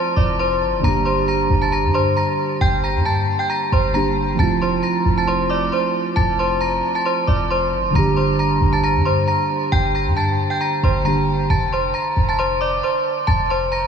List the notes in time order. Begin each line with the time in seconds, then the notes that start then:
Already playing: F3 A3 C4 E4 F4 C5 C6
0.16 F1 D5 D6
0.39 C5 C6
0.61 G1
0.73 F1
0.79 D3 G3
0.83 G1 A#3 D4 A#5 A#6
0.87 G4
1.05 C5 C6
1.28 A#5 A#6
1.50 G1
1.62 A5 A6
1.72 A#5 A#6
1.84 G2
1.94 C5 C6
2.17 A#5 A#6
2.61 G1 G5 G6
2.84 A#5 A#6
2.95 G2
3.05 A5 A6
3.39 G5 G6
3.50 A#5 A#6
3.72 G1 C5 C6
3.92 D3 G3 A#3 D4 A#5 A#6
3.97 G4
4.35 F3 A3
4.39 F1 C4 E4 A5 A6
4.43 F4
4.62 C5 C6
4.83 A#5 A#6
5.05 F1
5.18 A5 A6
5.28 C5 C6
5.50 D5 D6
5.72 C5 C6
6.16 F1 A5 A6
6.39 C5 C6
6.61 A#5 A#6
6.95 A5 A6
7.05 C5 C6
7.27 F1 D5 D6
7.51 C5 C6
7.72 G1
7.84 F1
7.90 D3 G3
7.94 G1 A#3 D4 A#5 A#6
7.98 G4
8.17 C5 C6
8.39 A#5 A#6
8.61 G1
8.73 A5 A6
8.84 A#5 A#6
8.95 G2
9.05 C5 C6
9.28 A#5 A#6
9.72 G1 G5 G6
9.95 A#5 A#6
10.06 G2
10.17 A5 A6
10.50 G5 G6
10.61 A#5 A#6
10.83 G1 C5 C6
11.04 D3 G3 A#3 D4 A#5 A#6
11.08 G4
11.50 F1 A5 A6
11.73 C5 C6
11.94 A#5 A#6
12.17 F1
12.29 A5 A6
12.39 C5 C6
12.61 D5 D6
12.83 C5 C6
13.27 F1 A5 A6
13.50 C5 C6
13.72 A#5 A#6